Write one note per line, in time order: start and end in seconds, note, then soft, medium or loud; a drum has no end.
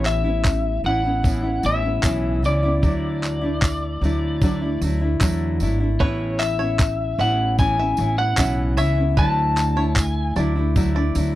0.00 0.81 A1 loud
0.00 0.24 A2 medium
0.00 0.25 E3 medium
0.00 0.25 B3 medium
0.00 0.25 C#4 medium
0.00 0.23 E4 medium
0.05 0.81 E5 medium
0.05 clap medium
0.05 tambourine soft
0.24 0.84 B3 soft
0.24 0.85 C#4 soft
0.24 0.84 E4 soft
0.45 kick medium
0.45 clap loud
0.45 tambourine medium
0.84 1.60 A1 medium
0.84 1.04 E3 medium
0.84 1.05 B3 soft
0.84 1.05 C#4 medium
0.84 1.03 E4 medium
0.84 1.67 F#5 loud
1.04 1.23 B3 soft
1.04 1.24 C#4 soft
1.04 1.24 E4 soft
1.23 1.44 A2 medium
1.23 1.44 E3 medium
1.23 1.44 B3 medium
1.23 1.44 C#4 medium
1.23 1.42 E4 medium
1.23 kick loud
1.23 tambourine soft
1.43 1.63 B3 soft
1.43 1.64 C#4 soft
1.43 1.63 E4 soft
1.63 2.00 A1 medium
1.63 1.83 E3 medium
1.63 1.84 B3 medium
1.63 1.84 C#4 medium
1.63 1.81 E4 medium
1.63 2.45 E5 loud
1.63 tambourine soft
1.83 2.02 B3 soft
1.83 2.03 C#4 soft
1.83 2.03 E4 soft
2.02 2.43 B1 medium
2.02 2.43 A2 medium
2.02 2.41 E3 medium
2.02 2.42 B3 medium
2.02 2.43 C#4 medium
2.02 2.44 E4 medium
2.02 kick loud
2.02 clap loud
2.02 tambourine medium
2.43 2.80 C#2 medium
2.43 2.63 E3 medium
2.43 2.63 B3 medium
2.43 2.64 C#4 medium
2.43 2.62 E4 medium
2.43 4.79 D5 medium
2.43 tambourine soft
2.63 2.83 B3 soft
2.63 2.84 C#4 soft
2.63 2.83 E4 medium
2.82 3.98 D2 medium
2.82 3.42 D3 medium
2.82 3.42 F#3 medium
2.82 3.43 A3 medium
2.82 3.42 D4 medium
2.82 3.40 E4 medium
2.82 kick medium
2.82 tambourine soft
3.23 clap medium
3.23 tambourine soft
3.41 4.02 A3 soft
3.41 4.03 D4 soft
3.41 4.01 E4 medium
3.62 kick loud
3.62 clap loud
3.62 tambourine medium
4.01 4.77 D2 medium
4.01 4.41 F#3 medium
4.01 4.42 A3 medium
4.01 4.43 D4 medium
4.01 4.43 E4 medium
4.01 tambourine soft
4.42 4.62 D3 medium
4.42 4.62 F#3 medium
4.42 4.62 A3 medium
4.42 4.62 D4 medium
4.42 4.60 E4 medium
4.42 kick loud
4.42 tambourine soft
4.62 4.82 A3 soft
4.62 4.82 D4 medium
4.62 4.81 E4 medium
4.81 5.18 D2 medium
4.81 5.02 F#3 medium
4.81 5.02 A3 medium
4.81 5.02 D4 medium
4.81 tambourine soft
4.86 5.00 E4 medium
5.01 5.21 A3 soft
5.01 5.22 D4 soft
5.01 5.21 E4 medium
5.21 5.62 E2 medium
5.21 5.61 D3 medium
5.21 5.59 F#3 medium
5.21 5.60 A3 medium
5.21 5.61 D4 medium
5.21 5.62 E4 medium
5.21 kick loud
5.21 clap loud
5.21 tambourine medium
5.60 5.97 G#1 medium
5.60 5.80 F#3 medium
5.60 5.81 A3 medium
5.60 5.81 D4 medium
5.60 5.79 E4 medium
5.60 tambourine soft
5.80 6.01 A3 soft
5.80 6.01 D4 soft
5.80 6.00 E4 medium
5.99 7.15 A1 loud
5.99 6.59 A2 medium
5.99 6.60 E3 medium
5.99 6.60 B3 medium
5.99 6.60 C#4 medium
5.99 6.58 E4 medium
5.99 6.38 B4 medium
5.99 6.41 C#5 medium
5.99 kick loud
6.39 7.21 E5 medium
6.39 clap medium
6.39 tambourine soft
6.59 7.19 B3 soft
6.59 7.20 C#4 soft
6.59 7.19 E4 soft
6.59 6.78 C#5 medium
6.79 kick loud
6.79 clap loud
6.79 tambourine medium
7.19 7.94 A1 loud
7.19 7.58 E3 medium
7.19 7.59 B3 medium
7.19 7.59 C#4 medium
7.19 7.57 E5 medium
7.19 7.57 F#5 medium
7.19 tambourine soft
7.23 7.59 E4 medium
7.58 7.79 A2 medium
7.58 7.79 E3 medium
7.58 7.79 B3 medium
7.58 7.78 C#4 medium
7.58 7.77 E4 medium
7.58 8.15 G#5 loud
7.58 kick loud
7.58 tambourine soft
7.78 7.97 B3 soft
7.78 7.98 C#4 medium
7.78 7.98 E4 medium
7.78 7.98 E5 medium
7.97 8.35 A1 medium
7.97 8.18 E3 medium
7.97 8.18 B3 medium
7.97 8.18 C#4 medium
7.97 8.16 E4 medium
7.97 tambourine soft
8.18 8.37 B3 soft
8.18 8.38 C#4 soft
8.18 8.38 E4 soft
8.18 8.74 F#5 medium
8.18 8.37 F#5 medium
8.37 8.78 B1 medium
8.37 8.77 A2 medium
8.37 8.76 E3 medium
8.37 8.77 B3 medium
8.37 8.78 C#4 medium
8.37 8.78 E4 medium
8.37 8.57 E5 medium
8.37 kick loud
8.37 clap loud
8.37 tambourine medium
8.77 9.14 C#2 medium
8.77 8.97 E3 medium
8.77 8.98 B3 medium
8.77 8.98 C#4 medium
8.77 8.96 E4 medium
8.77 8.97 C#5 medium
8.77 9.15 E5 medium
8.77 tambourine soft
8.97 9.18 B3 soft
8.97 9.18 C#4 soft
8.97 9.17 E4 medium
9.17 10.32 D2 medium
9.17 9.77 D3 medium
9.17 9.77 F#3 medium
9.17 9.77 A3 medium
9.17 9.77 D4 medium
9.17 9.75 E4 medium
9.17 9.55 B4 medium
9.17 9.94 A5 loud
9.17 kick loud
9.17 tambourine soft
9.57 clap medium
9.57 tambourine medium
9.57 tambourine soft
9.76 10.36 A3 soft
9.76 10.37 D4 soft
9.76 10.36 E4 soft
9.76 9.96 C#5 medium
9.94 10.33 G#5 loud
9.94 kick loud
9.94 clap loud
9.94 tambourine medium
10.36 11.12 D2 loud
10.36 10.56 F#3 medium
10.36 10.57 A3 medium
10.36 10.74 D5 medium
10.36 tambourine medium
10.37 10.56 D4 medium
10.37 10.54 E4 medium
10.37 tambourine soft
10.56 10.75 A3 medium
10.56 10.76 D4 soft
10.56 10.76 E4 medium
10.76 10.96 D3 medium
10.76 10.96 F#3 medium
10.76 10.96 A3 medium
10.76 10.96 D4 medium
10.76 10.94 E4 medium
10.76 kick loud
10.76 tambourine soft
10.95 11.15 A3 soft
10.95 11.16 D4 medium
10.95 11.15 E4 medium
10.95 11.15 D5 medium
11.15 11.35 D2 loud
11.15 11.35 F#3 medium
11.15 11.35 A3 medium
11.15 11.35 D4 medium
11.15 11.34 E4 medium
11.15 tambourine medium